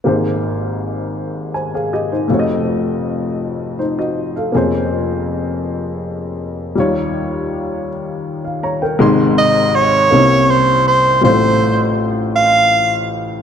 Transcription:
<<
  \new Staff \with { instrumentName = "Soprano saxophone" } { \time 6/8 \key aes \major \tempo 4. = 54 r2. | r2. | r2. | r2. |
r8 ees''8 des''4 c''8 c''8 | c''4 r8 f''4 r8 | }
  \new Staff \with { instrumentName = "Upright piano" } { \time 6/8 \key aes \major r2 <c'' aes''>16 <aes' f''>16 <g' ees''>16 <ees' c''>16~ | <ees' c''>16 r4. r16 <ees' c''>16 <ges' ees''>8 <a' f''>16~ | <a' f''>16 r2 r8. | r2 r16 f''16 <des'' bes''>16 <bes' g''>16~ |
<bes' g''>16 r2 r8. | r2. | }
  \new Staff \with { instrumentName = "Upright piano" } { \time 6/8 \key aes \major <aes,, aes, bes g' aes' c''>2. | <f,, f, a f' ges' des'' ees''>2. | <f,, f, bes des' aes' c''>2. | <ees, ees g ees' f' des''>2. |
<aes,, aes, c aes ees' c'''>4. <c, c bes c' des' ees' e'>4. | <a,, a, g a c' f' c''>2. | }
>>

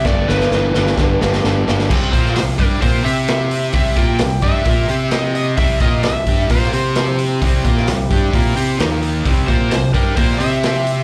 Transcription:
<<
  \new Staff \with { instrumentName = "Electric slide guitar" } { \time 4/4 \key c \mixolydian \tempo 4 = 130 d''8 b'2. r8 | r8 c''8 c''8 bes'8 c''8 e''4. | e''8 g''4 e''4. ees''8 ees''8 | e''8 ees''8 e''4 c''2 |
r1 | r8 c''8 c''8 bes'8 c''8 e''4. | }
  \new Staff \with { instrumentName = "Tonewheel organ" } { \time 4/4 \key c \mixolydian <b d' g'>1 | \tuplet 3/2 { <des' f' aes'>8 <c' e' g'>4~ } <c' e' g'>2.~ | <c' e' g'>1 | <c' e' g'>1~ |
<c' e' g'>2. <bes ees' bes'>4 | <c' e' g'>1 | }
  \new Staff \with { instrumentName = "Distorted electric guitar" } { \time 4/4 \key c \mixolydian <g, d>8 <g, d>8 <g, e>8 <g, e>8 <g, d>8 <g, d>8 <g, d>8 <g, d>8 | <c g c'>8 <bes f' bes'>8 <c g>8 <g d' g'>8 <bes f' bes'>8 <c' g' c''>4. | <c g c'>8 <bes f' bes'>8 <c g>8 <g d' g'>8 <bes f' bes'>8 <c' g' c''>4. | <c g c'>8 <bes f' bes'>8 <c g>8 <g d' g'>8 <bes f' bes'>8 <c' g' c''>4. |
<c g c'>8 <bes f' bes'>8 <c g>8 <g d' g'>8 <bes f' bes'>8 <c' g' c''>8 <ees bes ees'>4 | <c g c'>8 <bes f' bes'>8 <c g>8 <g d' g'>8 <bes f' bes'>8 <c' g' c''>4. | }
  \new Staff \with { instrumentName = "Fingered electric bass" } { \clef bass \time 4/4 \key c \mixolydian g,,8 g,,8 g,,8 g,,8 g,,8 g,,8 g,,8 g,,8 | c,8 bes,8 c,8 g,8 bes,8 c4. | c,8 bes,8 c,8 g,8 bes,8 c4. | c,8 bes,8 c,8 g,8 bes,8 c4. |
c,8 bes,8 c,8 g,8 bes,8 c8 ees,4 | c,8 bes,8 c,8 g,8 bes,8 c4. | }
  \new DrumStaff \with { instrumentName = "Drums" } \drummode { \time 4/4 <bd sn>8 sn16 sn16 sn8 sn16 sn16 <bd sn>8 sn16 sn16 sn8 sn16 sn16 | <cymc bd>8 <hho bd>16 sn16 <hho sn>8 <hho bd>8 <hho bd>8 hho8 <hho sn>8 hho8 | <hho bd>8 <hho bd>8 <hho sn>8 <hho bd>8 <hho bd>8 hho8 <hho sn>8 hho8 | <hho bd>8 <hho bd>8 <hho sn>8 <hho bd>8 <hho bd>16 sn16 hho8 <hho sn>8 hho8 |
<hho bd>8 <hho bd>16 sn16 <hho sn>8 <hho bd>8 <hho bd>8 hho8 <hho sn>8 hho8 | <hho bd>8 <hho bd>8 <hho sn>8 <hho bd>8 <hho bd>16 sn16 hho8 <hho sn>8 hho8 | }
>>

